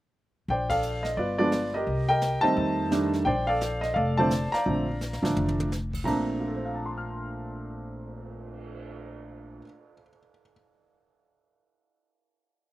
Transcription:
0.48 A#1 C5 D5 G5, brush sweep
0.70 A4 D5 F5, kick, ride
0.83 hi-hat pedal
1.03 D#5, snare
1.17 G1 F4 B4 D5, brush sweep
1.38 F3 G#3 B3 D4 F4 B4 D5
1.52 snare, hi-hat pedal
1.74 G4 A#4 D#5
1.87 C2, brush sweep
2.09 A#4 D#5 G5
2.21 snare, hi-hat pedal
2.41 D#3 G3 A3 C4 C5 D#5 A5, muted upright bass stroke
2.57 F2, brush sweep
2.91 D#3 G3 A3 D4, snare, hi-hat pedal
3.13 snare
3.25 A#1 C5 D5 G5, brush sweep
3.47 A4 D5 F5
3.61 snare, hi-hat pedal
3.81 D#5, snare
3.94 F1 A4 D5 F5, brush sweep
4.17 D3 F3 A3 C4 C5 D5 A5
4.31 snare, hi-hat pedal
4.52 D5 F5 A#5, muted upright bass stroke, snare
4.66 A#1 D3 F3 A3 C4, brush sweep
5.01 snare, hi-hat pedal
5.13 snare
5.22 A1 D3 F3 A3 D4, snare
5.36 F1, high tom
5.48 high tom
5.60 high tom
5.72 snare, hi-hat pedal
5.93 kick, crash
6.04 A#1 A#2 A3 C4 D4 A#5, kick, crash
6.28 cymbal swell
6.40 F4
6.48 A4
6.56 C5
6.65 F5
6.75 A5
6.86 C6
6.98 F6

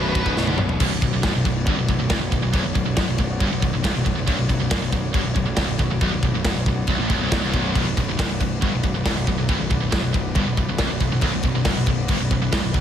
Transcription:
Already playing: B0 B1 F#2 B2 B3 D4 F#4 B4 C#5
0.04 B1 F#2
0.12 B1 F#2, kick, ride
0.16 B1 B2
0.20 F#2
0.26 B1 F#2, kick
0.35 B0 B1 F#2 B2, snare
0.43 B1 F#2
0.47 B1 F#2, high tom
0.58 B1 F#2 B2, mid tom
0.69 floor tom
0.80 B0 B1 B3 F#4 C#5 D5, kick, crash
0.92 B0 B1
1.01 B0 B1, kick, crash
1.14 B0 B1
1.23 F#1 F#2, kick, snare, crash
1.35 B0 B1
1.45 B0 B1, kick, crash
1.66 G1 G2, kick, crash
1.78 B0 B1
1.88 B0 B1, kick, crash
1.99 B0 B1
2.09 C1 C2, kick, snare, crash
2.21 B0 B1
2.32 B0 B1, kick, crash
2.43 B0 B1
2.53 B0 B1, kick, crash
2.64 B0 B1
2.75 B0 B1, kick, crash
2.86 B0 B1
2.97 F#1 F#2, kick, snare, crash
3.08 B0 B1
3.18 B0 B1, kick, crash
3.40 G1 G2, kick, crash
3.52 B0 B1
3.62 B0 B1, kick, crash
3.74 B0 B1
3.84 C1 C2, kick, snare, crash
3.96 B0 B1
4.05 B0 B1, kick, crash
4.17 B0 B1
4.28 B0 B1, kick, crash
4.39 B0 B1
4.49 B0 B1, kick, crash
4.60 B0 B1
4.71 F#1 F#2, kick, snare, crash
4.82 B0 B1
4.92 B0 B1, kick, crash
5.14 G1 G2, kick, crash
5.25 B0 B1
5.36 B0 B1, kick, crash
5.46 B0 B1
5.57 C1 C2, kick, snare, crash
5.68 B0 B1
5.79 B0 B1, kick, crash
5.91 B0 B1
6.01 B0 B1, kick, crash
6.12 B0 B1
6.23 B0 B1, kick, crash
6.33 B0 B1
6.45 F#1 F#2, kick, snare, crash
6.55 B0 B1
6.66 B0 B1, kick, crash
6.87 C1 C2, kick, crash
6.99 A1 A2
7.10 B0 B1, kick, crash
7.21 C1 C2
7.31 B0 B1, kick, snare, crash
7.42 C1 C2
7.53 B0 B1, kick, crash
7.75 B0 B1 B4, kick, crash
7.87 B0 B1
7.97 B0 B1, kick, crash
8.09 B0 B1
8.19 F#1 F#2, kick, snare, crash
8.29 B0 B1
8.40 B0 B1, kick, crash
8.62 G1 G2, kick, crash
8.74 B0 B1
8.83 B0 B1, kick, crash
8.96 B0 B1
9.06 C1 C2, kick, snare, crash
9.17 B0 B1
9.27 B0 B1, kick, crash
9.38 B0 B1
9.49 B0 B1, kick, crash
9.60 B0 B1
9.70 B0 B1, kick, crash
9.82 B0 B1
9.92 F#1 F#2, kick, snare, crash
10.03 B0 B1
10.14 B0 B1, kick, crash
10.35 G1 G2, kick, crash
10.47 B0 B1
10.57 B0 B1, kick, crash
10.69 B0 B1
10.78 C1 C2, kick, snare, crash
10.90 B0 B1
11.00 B0 B1, kick, crash
11.12 B0 B1
11.21 B0 B1, kick, crash
11.33 B0 B1
11.43 B0 B1, kick, crash
11.55 B0 B1
11.65 F#1 F#2, kick, snare, crash
11.77 B0 B1
11.86 B0 B1, kick, crash
12.08 G1 G2, kick, crash
12.20 B0 B1
12.31 B0 B1, kick, crash
12.41 B0 B1
12.52 C1 C2, kick, snare, crash
12.63 B0 B1
12.74 B0 B1, kick, crash

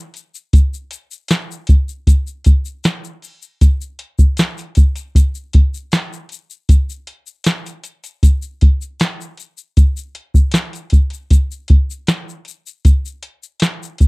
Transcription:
0.14 closed hi-hat, shaker
0.35 shaker
0.53 kick, closed hi-hat, shaker
0.74 shaker
0.91 closed hi-hat, shaker
1.11 shaker
1.28 snare, closed hi-hat, shaker
1.51 shaker
1.67 kick, closed hi-hat, shaker
1.89 shaker
2.07 kick, closed hi-hat, shaker
2.27 shaker
2.44 kick, closed hi-hat, shaker
2.65 shaker
2.84 snare, closed hi-hat, shaker
3.05 shaker
3.22 open hi-hat, shaker
3.42 shaker
3.61 kick, closed hi-hat, shaker
3.81 shaker
3.99 closed hi-hat
4.19 kick, shaker
4.37 snare, closed hi-hat, shaker
4.58 closed hi-hat, shaker
4.75 kick, closed hi-hat, shaker
4.96 closed hi-hat, shaker
5.15 kick, closed hi-hat, shaker
5.35 shaker
5.53 kick, closed hi-hat
5.74 shaker
5.92 snare, closed hi-hat, shaker
6.13 shaker
6.29 closed hi-hat, shaker
6.50 shaker
6.69 kick, closed hi-hat, shaker
6.90 shaker
7.07 closed hi-hat
7.27 shaker
7.44 snare, closed hi-hat, shaker
7.66 closed hi-hat, shaker
7.84 closed hi-hat, shaker
8.04 closed hi-hat, shaker
8.23 kick, closed hi-hat, shaker
8.42 shaker
8.61 kick, closed hi-hat
8.82 shaker
9.00 snare, closed hi-hat, shaker
9.21 shaker
9.37 closed hi-hat, shaker
9.58 shaker
9.77 kick, closed hi-hat, shaker
9.97 shaker
10.15 closed hi-hat
10.34 kick, shaker
10.52 snare, closed hi-hat, shaker
10.73 closed hi-hat, shaker
10.90 kick, closed hi-hat, shaker
11.10 closed hi-hat, shaker
11.30 kick, closed hi-hat, shaker
11.51 shaker
11.68 kick, closed hi-hat
11.90 shaker
12.07 snare, closed hi-hat, shaker
12.29 shaker
12.45 closed hi-hat, shaker
12.67 shaker
12.85 kick, closed hi-hat, shaker
13.06 shaker
13.23 closed hi-hat
13.43 shaker
13.60 snare, closed hi-hat, shaker
13.83 shaker
13.98 kick, closed hi-hat, shaker

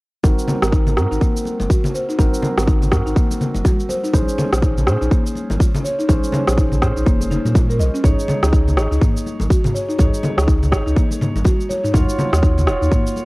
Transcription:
0.23 G#1 C4 D#4 F#4 A#4, kick, high conga, cabasa
0.39 cabasa
0.48 high conga, low conga, cabasa
0.62 G#1 C4 F#4 A#4, cross-stick, cabasa
0.72 D#4, kick, cabasa
0.87 low conga, cabasa
0.97 G#2 C4 F#4 A#4, cross-stick, cabasa
1.11 G#1 D#4, cabasa
1.21 A#3, kick, cabasa
1.37 cabasa
1.45 high conga, cabasa
1.60 F#1, high conga, cabasa
1.70 F#4, kick, cabasa
1.84 low conga, cabasa
1.94 C5, cabasa
2.09 D#4, cabasa
2.19 G#1 C4 D#4 F#4 A#4, kick, high conga, cabasa
2.34 cabasa
2.42 high conga, low conga, cabasa
2.58 G#1 C4 F#4 A#4, cross-stick, cabasa
2.67 D#4, kick, cabasa
2.82 low conga, cabasa
2.92 G#2 C4 F#4 A#4, kick, cross-stick, cabasa
3.06 G#1 D#4, cabasa
3.16 A#3, kick, cabasa
3.31 high conga, cabasa
3.41 low conga, cabasa
3.55 F#1, high conga, cabasa
3.65 F#4, kick, high conga, cabasa
3.80 cabasa
3.89 C5, high conga, cabasa
4.04 D#4, cabasa
4.13 A#1 C#4 D#4 G#4 C5, kick, high conga, cabasa
4.29 cabasa
4.38 high conga, low conga, cabasa
4.52 A#1 C#4 G#4 C5, cross-stick, cabasa
4.62 D#4, kick, cabasa
4.78 low conga, cabasa
4.87 A#2 C#4 G#4 C5, cross-stick, cabasa
5.01 A#1 D#4, cabasa
5.11 A#3, kick, cabasa
5.26 cabasa
5.35 high conga, cabasa
5.50 G#1, high conga, cabasa
5.60 F4, kick, cabasa
5.74 low conga, cabasa
5.84 C#5, cabasa
5.99 D#4, cabasa
6.09 A#1 C#4 D#4 G#4 C5, kick, high conga, cabasa
6.24 cabasa
6.32 high conga, low conga, cabasa
6.47 A#1 C#4 G#4 C5, cross-stick, cabasa
6.57 D#4, kick, cabasa
6.72 low conga, cabasa
6.82 A#2 C#4 G#4 C5, kick, cross-stick, cabasa
6.96 A#1 D#4, cabasa
7.06 F1 A#3, kick, cabasa
7.21 high conga, cabasa
7.31 D#4, low conga, cabasa
7.45 A#2, high conga, cabasa
7.55 F4, kick, high conga, cabasa
7.69 A#4, cabasa
7.79 A#1 D#5, high conga, cabasa
7.94 C#4, cabasa
8.04 C#2 D#4 G#4 C#5, kick, mid tom, high conga, cabasa
8.19 cabasa
8.28 high conga, low conga, cabasa
8.43 C#2 D#4 G#4 C#5, cross-stick, cabasa
8.53 D#4, kick, cabasa
8.68 low conga, cabasa
8.77 G#1 D#4 G#4 C#5, cross-stick, cabasa
8.91 C#2 D#4, cabasa
9.01 A#3, kick, mid tom, cabasa
9.17 cabasa
9.26 high conga, cabasa
9.40 G#1, high conga, cabasa
9.50 F#4, kick, cabasa
9.64 mid tom, low conga, cabasa
9.74 C#5, cabasa
9.89 D#4, cabasa
9.99 C#2 D#4 G#4 C#5, kick, mid tom, high conga, cabasa
10.14 cabasa
10.23 high conga, low conga, cabasa
10.37 C#2 D#4 G#4 C#5, cross-stick, cabasa
10.47 D#4, kick, cabasa
10.63 low conga, cabasa
10.72 G#1 D#4 G#4 C#5, kick, cross-stick, cabasa
10.86 C#2 D#4, cabasa
10.96 A#3, kick, cabasa
11.11 high conga, cabasa
11.21 mid tom, low conga, cabasa
11.35 G#1, high conga, cabasa
11.45 F#4, kick, high conga, cabasa
11.60 cabasa
11.69 C#5, high conga, cabasa
11.84 D#4, mid tom, cabasa
11.94 D#2 D#4 F4 F#4 C#5, kick, mid tom, high conga, cabasa
12.09 cabasa
12.19 high conga, low conga, cabasa
12.33 D#2 F4 F#4 C#5, cross-stick, cabasa
12.43 D#4, kick, cabasa
12.58 low conga, cabasa
12.67 D#1 F4 F#4 C#5, cross-stick, cabasa
12.81 D#2 D#4, cabasa
12.91 A#3, kick, mid tom, cabasa
13.07 cabasa
13.16 high conga, cabasa

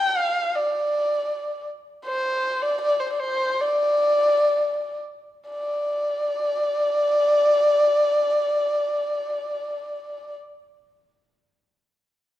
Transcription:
Already playing: G5
0.17 F5
0.55 D5
2.06 C5
2.62 D5
2.81 D5
3.00 C5
3.12 D5
3.20 C5
3.61 D5
5.50 D5

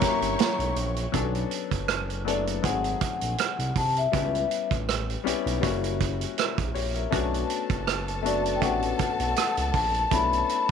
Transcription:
Already playing: F#3 A#3 E4 G4 C#5 G5 A#5 C#6
0.00 F#3 A#3 C#4 E4 G4, kick, snare, closed hi-hat
0.21 G1, closed hi-hat
0.39 snare, closed hi-hat
0.59 B1, closed hi-hat
0.76 A#1, closed hi-hat
0.96 closed hi-hat
1.12 B1 F#3 B3 C#4 D4 A4, kick, closed hi-hat
1.35 closed hi-hat
1.51 closed hi-hat
1.71 F#1, kick, closed hi-hat
1.88 cross-stick, closed hi-hat
2.10 closed hi-hat
2.25 F#3 A3 B3 D4 A4 D5, closed hi-hat
2.47 closed hi-hat
2.62 G#1 F#3 A3 C4 D#4 G#4 F#5, kick, closed hi-hat
2.84 closed hi-hat
3.01 kick, cross-stick, closed hi-hat
3.21 A#1, closed hi-hat
3.38 cross-stick, closed hi-hat
3.59 C2, closed hi-hat
3.76 C2 A5, kick, open hi-hat
3.96 E5, closed hi-hat
4.12 C#2 G3 B3 C#4 E4 G4, kick, closed hi-hat
4.35 closed hi-hat
4.51 closed hi-hat
4.71 A1, kick, closed hi-hat
4.89 cross-stick, closed hi-hat
5.09 closed hi-hat
5.24 B1 G3 B3 C#4 E4 G4, closed hi-hat
5.46 B1, closed hi-hat
5.61 F#1 G3 A#3 C#4 E4 F#4, kick, closed hi-hat
5.84 closed hi-hat
6.00 kick, closed hi-hat
6.21 closed hi-hat
6.37 E4 A#4, cross-stick, closed hi-hat
6.58 A#1, kick, closed hi-hat
6.75 A#1 G4 C#5, open hi-hat
6.95 A#4 E5, closed hi-hat
7.11 B1 A3 B3 C#4 D4 F#4 A4 A5, kick, closed hi-hat
7.34 closed hi-hat
7.50 closed hi-hat
7.70 F#1, kick, closed hi-hat
7.87 cross-stick, closed hi-hat
8.08 closed hi-hat
8.23 A3 B3 D4 F#4 D5, closed hi-hat
8.45 closed hi-hat
8.56 G5
8.61 A1 A3 B3 C#4 D4 F#4 F#5, kick, closed hi-hat
8.82 closed hi-hat
8.99 kick, cross-stick, closed hi-hat
9.19 B1 F#5, closed hi-hat
9.36 cross-stick, closed hi-hat
9.57 C#2, closed hi-hat
9.74 A#1 A5, kick, open hi-hat
9.94 closed hi-hat
10.11 B1 A3 B3 C#4 D4 E4 B5, kick, closed hi-hat
10.33 closed hi-hat
10.49 closed hi-hat

